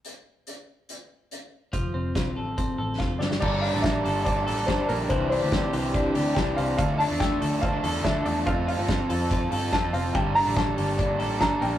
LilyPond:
<<
  \new Staff \with { instrumentName = "Upright piano" } { \time 4/4 \key f \major \tempo 4 = 143 r1 | r2. f''8 d''8 | d''8 f''8 e''4 d''4 c''8 bes'8 | c''8 c''2 r8 g''8 f''8 |
f''8 a''8 g''4 f''4 e''8 d''8 | f''8 f''2 r8 a''8 f''8 | g''8 bes''8 a''4 r4 bes''8 g''8 | }
  \new Staff \with { instrumentName = "Clean electric guitar" } { \time 4/4 \key f \major r1 | f8 c'8 f'8 a'8 c'8 a'8 f'8 g8 | g8 d'8 bes8 a'8 c'16 d'16 a'8 d'8 bes8 | e8 d'8 c'8 g'8 d'8 g'8 d'8 c'8 |
r8 d'8 a8 a'8 c'16 d'16 a'8 d'8 a8 | f8 f'8 c'8 a'8 f'8 a'8 f'8 c'8 | g8 d'8 bes8 g'16 a'16 d'8 a'8 d'8 bes8 | }
  \new Staff \with { instrumentName = "Overdriven electric guitar" } { \time 4/4 \key f \major r1 | r1 | <g bes d' a'>8. <bes d' a'>8. <g bes d' a'>4 <g bes d' a'>8 <g bes d' a'>4 | <c e c' d' g'>8. <c' d' g'>8. <e c' d' g'>4 <e c' d' g'>8 <e c' d' g'>4 |
<d f a d' a'>8. <a d' a'>8. <f a d' a'>4 <f a d' a'>8 <f a d' a'>4 | <f c' f' a'>8. <c' f' a'>8. <f c' f' a'>4 <f c' f' a'>8 <f c' f' a'>4 | <g bes d' a'>8. <bes d' a'>8. <g bes d' a'>4 <g bes d' a'>8 <g bes d' a'>4 | }
  \new Staff \with { instrumentName = "Fingered electric bass" } { \clef bass \time 4/4 \key f \major r1 | f,,8 f,,8 c,8 a,,4 a,,8 f,,8 g,,8 | g,,8. a,,8. g,,4 a,,8 g,,8 bes,,8 | c,8. d,8. c,4 d,8 c,8 c,8 |
d,8. e,8. d,4 e,8 d,8 e,8 | f,8. g,8. f,4 g,8 f,8 f,,8 | g,,8. a,,8. g,,4 a,,8 g,,8 bes,,8 | }
  \new DrumStaff \with { instrumentName = "Drums" } \drummode { \time 4/4 hh4 hh4 hh4 hh4 | <hh bd>4 <hh bd sn>4 <hh bd>4 <bd sn>8 sn16 sn16 | <cymc bd>8 hho8 <hh bd sn>8 hho8 <hh bd>8 hho8 <hh bd sn>8 hho8 | <hh bd>8 hho8 <hh bd sn>8 hho8 <hh bd>8 hho8 <hh bd sn>8 hho8 |
<hh bd>8 hho8 <hh bd sn>8 hho8 <hh bd>8 hho8 <hh bd sn>8 hho8 | <hh bd>8 hho8 <hh bd sn>8 hho8 <hh bd>8 hho8 <hh bd sn>8 hho8 | <hh bd>8 hho8 <hh bd sn>8 hho8 <hh bd>8 hho8 <hh bd sn>8 hho8 | }
>>